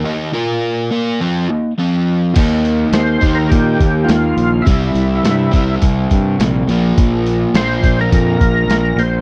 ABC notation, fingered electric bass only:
X:1
M:4/4
L:1/8
Q:1/4=104
K:Ebmix
V:1 name="Fingered electric bass" clef=bass
z8 | E,,2 E,, E,, B,, E,, E,, B,,, | C,, C,, G,, C,, C,, G,, B,,, B,,, | B,,,2 B,,, B,,, F,, B,,, B,,, B,,, |]